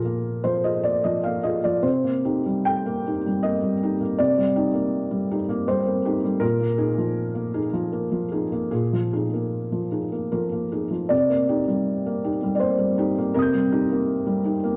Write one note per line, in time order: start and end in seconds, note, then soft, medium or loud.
0.00 1.81 A#2 soft
0.00 0.45 F3 soft
0.00 0.65 F4 soft
0.00 0.65 G#4 soft
0.00 0.44 A#4 soft
0.05 0.68 A#3 soft
0.44 0.76 F3 soft
0.44 0.64 C5 soft
0.64 0.82 F4 soft
0.64 0.83 G#4 soft
0.64 0.84 D#5 soft
0.84 1.16 A#3 soft
0.84 1.04 D5 soft
1.04 1.37 F3 soft
1.04 1.24 D#5 medium
1.24 1.57 A#3 soft
1.24 1.44 F5 soft
1.43 1.62 F4 soft
1.43 1.63 G#4 soft
1.43 1.64 D#5 soft
1.64 1.85 F3 soft
1.64 1.84 D5 soft
1.83 4.14 C3 soft
1.83 2.66 C5 medium
2.04 2.38 A#3 soft
2.25 2.44 D#4 soft
2.25 2.44 G4 soft
2.46 3.10 G3 soft
2.65 3.43 G5 medium
2.86 3.17 A#3 soft
3.07 3.24 D#4 soft
3.07 3.24 G4 soft
3.26 3.56 G3 soft
3.43 3.74 A#3 soft
3.43 4.18 D#5 medium
3.63 3.93 G3 soft
3.83 3.99 D#4 soft
3.83 3.99 G4 soft
4.01 4.31 A#3 soft
4.19 6.39 C3 soft
4.19 5.67 D5 medium
4.38 4.67 G3 soft
4.56 4.73 D#4 soft
4.56 4.73 G4 soft
4.74 5.34 A#3 soft
5.11 5.41 G3 soft
5.31 5.48 D#4 soft
5.31 5.48 G4 soft
5.49 5.79 A#3 soft
5.68 5.98 G3 soft
5.68 6.42 C5 medium
5.86 6.16 A#3 soft
6.05 6.22 D#4 soft
6.05 6.22 G4 soft
6.24 6.42 G3 soft
6.40 8.66 A#2 soft
6.40 8.70 A#4 medium
6.60 6.89 A#3 soft
6.78 6.94 D#4 soft
6.78 6.95 G#4 soft
6.98 7.57 F3 soft
7.35 7.65 A#3 soft
7.54 7.71 D#4 soft
7.54 7.71 G#4 soft
7.73 8.04 F3 soft
7.93 8.23 A#3 soft
8.12 8.43 F3 soft
8.32 8.49 D#4 soft
8.32 8.49 G#4 soft
8.52 8.84 A#3 soft
8.71 11.08 A#2 soft
8.71 9.12 G#4 soft
8.93 9.24 F3 soft
9.13 9.30 D#4 soft
9.13 9.30 G#4 soft
9.33 9.97 A#3 soft
9.72 10.04 F3 soft
9.91 10.09 D#4 soft
9.91 10.10 G#4 soft
10.12 10.44 A#3 soft
10.32 10.64 F3 soft
10.32 11.11 A#4 soft
10.52 10.84 A#3 soft
10.72 10.90 D#4 soft
10.72 10.90 G#4 soft
10.91 11.11 F3 soft
11.09 13.32 C3 soft
11.09 12.54 D5 medium
11.29 11.60 A#3 soft
11.49 11.66 D#4 soft
11.49 11.66 G4 soft
11.68 12.28 G3 soft
12.06 12.36 A#3 soft
12.24 12.41 D#4 soft
12.24 12.41 G4 soft
12.43 12.73 G3 soft
12.55 12.62 D5 soft
12.60 12.91 A#3 soft
12.60 13.35 C5 medium
12.78 13.09 G3 soft
12.98 13.15 D#4 soft
12.98 13.16 G4 soft
13.18 13.47 A#3 soft
13.34 14.77 C3 soft
13.34 14.77 A#4 medium
13.34 14.77 A#5 soft
13.39 14.77 D#6 soft
13.39 14.77 G6 soft
13.54 13.83 G3 soft
13.72 13.88 D#4 soft
13.72 13.89 G4 soft
13.92 14.50 A#3 soft
14.27 14.56 G3 soft
14.44 14.61 D#4 soft
14.44 14.62 G4 soft
14.64 14.77 A#3 soft